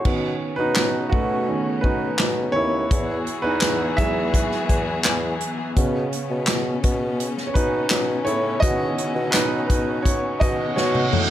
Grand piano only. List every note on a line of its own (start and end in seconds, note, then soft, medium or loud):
0.00 0.55 F#4 medium
0.00 0.61 C#5 medium
0.05 0.53 D#3 soft
0.05 0.53 B3 soft
0.05 0.53 C#4 medium
0.56 1.09 D#4 medium
0.56 1.13 B4 medium
1.09 1.80 A3 medium
1.09 1.78 F#4 medium
1.48 1.80 D#3 soft
1.48 1.80 B3 soft
1.48 1.81 C#4 soft
1.81 2.52 D#4 medium
1.81 2.56 B4 medium
2.52 3.41 E4 medium
2.52 3.39 C#5 loud
3.42 3.95 D#4 medium
3.42 3.93 B4 medium
3.97 4.46 F#3 medium
3.97 4.46 G#3 soft
3.97 4.46 E4 medium
3.97 5.02 G#4 medium
3.97 5.00 E5 loud
5.77 8.58 C#3 medium
5.77 8.59 B3 soft
5.77 8.59 C#4 medium
7.47 7.55 C#5 medium
7.54 8.23 D#4 medium
7.54 8.22 B4 medium
8.25 8.61 E4 medium
8.25 8.63 C#5 medium
8.60 9.10 D#3 medium
8.60 9.10 B3 soft
8.60 9.10 C#4 medium
8.60 9.30 F#4 medium
8.60 9.35 D#5 loud
9.31 9.68 D#4 medium
9.31 9.65 B4 medium
9.67 10.03 D#4 medium
9.67 10.01 B4 medium
10.02 10.41 F#4 medium
10.02 10.75 C#5 medium
10.40 10.73 D#3 soft
10.40 10.73 B3 soft
10.40 10.74 C#4 soft
10.40 10.75 F#4 medium
10.40 10.77 D#5 medium
10.76 11.30 F#4 medium
10.76 11.30 C#5 medium